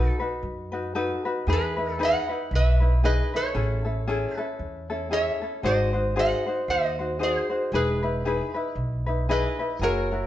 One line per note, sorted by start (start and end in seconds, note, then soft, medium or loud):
0.00 0.20 D#4 medium
0.00 0.20 F#4 medium
0.00 0.41 F#4 medium
0.00 0.19 A4 medium
0.00 0.08 B4 medium
0.00 0.18 B4 medium
0.08 0.39 A4 medium
0.20 0.73 D#4 medium
0.20 0.72 F#4 soft
0.20 0.72 B4 medium
0.43 1.11 F#2 medium
0.72 0.94 D#4 medium
0.72 0.94 F#4 medium
0.72 0.95 B4 medium
0.95 1.25 D#4 medium
0.95 1.25 F#4 medium
0.95 1.25 A4 medium
0.95 1.24 B4 medium
1.25 1.47 D#4 soft
1.25 1.48 F#4 medium
1.25 1.47 B4 medium
1.47 2.15 E2 loud
1.47 1.78 D#4 medium
1.47 1.77 E4 medium
1.47 1.78 G#4 medium
1.47 1.97 G#4 medium
1.47 1.75 B4 medium
1.53 2.04 B4 medium
1.77 1.99 D#4 soft
1.77 1.99 E4 soft
1.77 1.99 B4 medium
1.99 2.29 D#4 medium
1.99 2.30 E4 medium
1.99 2.29 G#4 medium
1.99 2.28 B4 medium
1.99 2.50 D#5 medium
2.05 2.56 F#5 loud
2.29 2.81 D#4 soft
2.29 2.81 E4 soft
2.29 2.79 B4 soft
2.51 3.19 B1 medium
2.55 3.02 B4 medium
2.55 3.05 E5 medium
2.80 3.03 D#4 soft
2.80 3.03 E4 medium
2.80 3.03 B4 soft
3.04 3.34 D#4 medium
3.04 3.33 E4 medium
3.04 3.34 G#4 medium
3.04 3.32 B4 medium
3.04 3.35 D#5 medium
3.34 3.54 D#4 soft
3.34 3.54 E4 soft
3.34 4.87 A4 medium
3.34 3.55 B4 medium
3.34 4.37 C#5 medium
3.54 4.23 A1 loud
3.54 3.85 C#4 medium
3.54 3.84 E4 medium
3.54 3.85 G#4 medium
3.54 3.83 A4 medium
3.85 4.07 C#4 soft
3.85 4.07 E4 soft
3.85 4.07 A4 medium
4.08 4.38 C#4 medium
4.08 4.37 E4 medium
4.08 4.38 G#4 medium
4.08 4.36 A4 medium
4.37 4.90 C#4 soft
4.37 4.89 E4 medium
4.37 4.89 A4 medium
4.37 4.87 B4 medium
4.59 5.27 E2 medium
4.90 5.10 C#4 soft
4.90 5.10 E4 soft
4.90 5.11 A4 medium
5.11 5.41 C#4 medium
5.11 5.41 E4 medium
5.11 5.41 G#4 medium
5.11 5.40 A4 medium
5.11 5.61 C#5 medium
5.11 5.65 E5 medium
5.42 5.63 C#4 soft
5.42 5.64 E4 medium
5.42 5.64 A4 soft
5.63 6.31 G#1 loud
5.63 5.94 D#4 medium
5.63 5.93 F#4 medium
5.63 5.93 G#4 medium
5.63 5.92 C5 medium
5.63 6.14 C5 medium
5.63 6.18 D#5 medium
5.93 6.15 D#4 soft
5.93 6.16 F#4 soft
5.93 6.16 C5 medium
6.16 6.46 D#4 medium
6.16 6.46 F#4 medium
6.16 6.46 G#4 medium
6.16 6.45 C5 medium
6.16 6.66 D#5 medium
6.16 6.71 F#5 medium
6.46 7.01 D#4 soft
6.46 6.99 F#4 soft
6.46 6.98 C5 medium
6.68 7.36 D#2 medium
6.68 7.18 C5 medium
6.68 7.23 D#5 medium
6.99 7.19 D#4 soft
6.99 7.19 F#4 soft
6.99 7.20 C5 medium
7.19 7.50 D#4 medium
7.19 7.50 F#4 medium
7.19 7.49 G#4 medium
7.19 7.49 C5 medium
7.19 7.75 C5 medium
7.24 7.71 G#4 medium
7.50 7.73 D#4 soft
7.50 7.73 F#4 soft
7.50 7.72 C5 medium
7.72 8.40 E1 loud
7.72 8.03 D#4 medium
7.72 8.02 E4 medium
7.72 8.02 G#4 medium
7.72 8.74 G#4 medium
7.72 8.01 B4 medium
7.72 8.74 B4 medium
8.03 8.25 D#4 soft
8.03 8.25 E4 soft
8.03 8.25 B4 medium
8.25 8.55 D#4 medium
8.25 8.55 E4 medium
8.25 8.55 G#4 medium
8.25 8.53 B4 medium
8.54 9.07 D#4 soft
8.54 9.07 E4 medium
8.54 9.05 B4 medium
8.75 9.43 B1 medium
9.06 9.28 D#4 medium
9.06 9.28 E4 soft
9.06 9.28 B4 medium
9.29 9.58 D#4 medium
9.29 9.59 E4 medium
9.29 9.58 G#4 medium
9.29 9.58 B4 medium
9.29 9.78 B4 medium
9.29 9.83 D#5 medium
9.59 9.81 D#4 soft
9.59 9.81 E4 medium
9.59 9.81 B4 medium
9.79 10.27 F#1 loud
9.79 10.11 E4 medium
9.79 10.11 F#4 medium
9.79 10.11 G#4 medium
9.79 10.10 A#4 medium
9.79 10.27 C#5 medium
9.84 10.27 A#4 medium
10.11 10.27 E4 soft
10.11 10.27 F#4 soft
10.11 10.27 A#4 medium